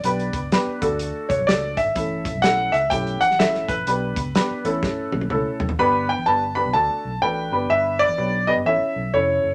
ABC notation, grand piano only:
X:1
M:4/4
L:1/16
Q:"Swing" 1/4=126
K:Amix
V:1 name="Grand piano"
d4 z6 c2 d2 e2- | e4 f2 e2 g2 f2 e2 B2- | B12- B2 z2 | b2 g2 a2 b2 a4 g4 |
e2 d4 ^d2 e4 c3 z |]